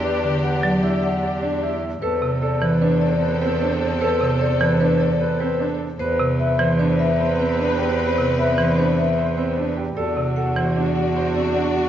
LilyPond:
<<
  \new Staff \with { instrumentName = "Vibraphone" } { \time 5/4 \key c \lydian \tempo 4 = 151 d''8 r8 fis''8 r8 d''8 fis''8 r8 d''8 r4 | b'8 r8 d''8 r8 b'8 d''8 r8 b'8 r4 | b'8 r8 d''8 r8 b'8 d''8 r8 b'8 r4 | c''8 r8 e''8 r8 c''8 e''8 r8 c''8 r4 |
c''8 r8 e''8 r8 c''8 e''8 r8 c''8 r4 | d''8 r8 fis''8 r8 d''8 fis''8 r8 d''8 r8 fis''8 | }
  \new Staff \with { instrumentName = "Alto flute" } { \time 5/4 \key c \lydian g'1~ g'8 r8 | c''1~ c''4~ | c''1~ c''8 r8 | b'1~ b'4~ |
b'1~ b'8 r8 | fis'1~ fis'4 | }
  \new Staff \with { instrumentName = "Grand piano" } { \time 5/4 \key c \lydian b'8 r8 b'8 d''8 e'8 r8 d''8 d'8 e'8 r8 | a'8 r8 a'8 b'8 d'8 r8 b'8 c'8 d'8 r8 | a'8 r8 a'8 b'8 d'8 r8 b'8 c'8 d'8 r8 | b'8 r8 b'8 c''8 d'8 r8 c''8 c'8 d'8 g'8 |
b'8 r8 b'8 c''8 d'8 r8 c''8 c'8 d'8 g'8 | a'8 r8 a'8 c''8 d'8 r8 c''8 c'8 d'8 fis'8 | }
  \new Staff \with { instrumentName = "String section" } { \time 5/4 \key c \lydian <d' g'>1~ <d' g'>8 r8 | <c' a'>1~ <c' a'>4~ | <c' a'>1~ <c' a'>8 r8 | <c' b'>1~ <c' b'>4~ |
<c' b'>1~ <c' b'>8 r8 | <d' fis'>1~ <d' fis'>4 | }
  \new Staff \with { instrumentName = "Marimba" } { \clef bass \time 5/4 \key c \lydian r8 d8 r8 fis8 r2. | r8 c8 r8 e8 r2. | r8 c8 r8 e8 r2. | r8 c8 r8 e8 r2. |
r8 c8 r8 e8 r2. | r8 c8 r8 e8 r2. | }
  \new Staff \with { instrumentName = "Cello" } { \clef bass \time 5/4 \key c \lydian e,1~ e,4 | e,1~ e,4~ | e,1~ e,4 | e,1~ e,4~ |
e,1~ e,4 | e,1~ e,4 | }
>>